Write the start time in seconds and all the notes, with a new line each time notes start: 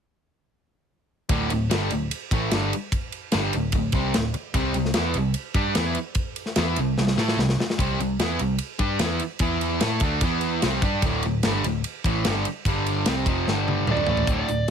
1.29 D1 D2 A2 D3, kick, ride
1.49 D1 D2 A2, ride
1.70 G1 G2 D3 G3, snare, ride
1.90 D1 D2 A2, ride
2.11 ride
2.31 A1 A2 E3 A3, kick, ride
2.51 G1 G2 D3 G3, snare, ride
2.73 ride
2.92 kick, ride
3.12 ride
3.32 G1 G2 D3 G3, snare, ride
3.53 D1 D2 A2, ride
3.72 D1 D2 A2, kick, ride
3.92 C2 C3 G3 C4, kick, ride
4.14 D1 D2 A2, snare, ride
4.34 muted distorted electric guitar stroke, muted overdriven electric guitar stroke, muted picked electric bass stroke, ride
4.54 C2 C3 G3 C4, kick, ride
4.74 C2 C3 G3, ride
4.85 snare
4.94 E2 E3 B3 E4, snare, ride
5.14 C2 C3 G3, ride
5.34 ride
5.54 G2 G3 D4 G4, kick, ride
5.75 E2 E3 B3 E4, snare, ride
5.95 ride
6.15 kick, ride
6.36 ride
6.46 snare
6.56 E2 E3 B3, snare, ride
6.60 E4
6.76 C2 C3 G3, ride
6.98 C2 C3 G3, snare
7.07 snare
7.17 A2 A3 E4 A4, snare
7.28 snare
7.37 C2 C3 G3, snare
7.49 snare
7.59 muted picked electric bass stroke, muted distorted electric guitar stroke, muted overdriven electric guitar stroke, snare
7.70 snare
7.78 C2 C3 G3 C4, kick, ride
8.00 C2 C3 G3, ride
8.19 E2 E3 B3 E4, snare, ride
8.39 C2 C3 G3, ride
8.58 ride
8.79 G2 G3 D4 G4, kick, ride
8.99 E2 E3 B3 E4, snare, ride
9.19 ride
9.39 E2 E3 B3 E4, kick, ride
9.61 ride
9.81 A2 A3 E4 A4, snare, ride
10.00 D2 D3 A3, kick, ride
10.04 D4
10.21 E2 E3 B3, kick, ride
10.25 E4
10.41 ride
10.62 C2 C3 G3 C4, snare, ride
10.82 G2 G3 D4 G4, kick, ride
11.02 D1 D2 A2 D3, kick, ride
11.23 D1 D2 A2, ride
11.43 G1 G2, snare, ride
11.47 D3 G3
11.64 D1 D2 A2, ride
11.84 ride
12.04 A1 A2 E3 A3, kick, ride
12.25 G1 G2 D3 G3, snare, ride
12.45 ride
12.65 G1 G2 D3 G3, kick, ride
12.86 ride
13.06 C2 C3 G3 C4, snare, ride
13.26 F1 F2 C3 F3, kick, ride
13.47 G1 G2 D3 G3, snare
13.68 high tom
13.87 D1 D2 A2 D3, mid tom
13.91 D5
13.97 mid tom
14.07 A1 A2 E3 A3, floor tom
14.17 floor tom
14.27 D1 D2 A2 D3, kick, closed hi-hat
14.32 D5
14.48 D1 D2 A2, closed hi-hat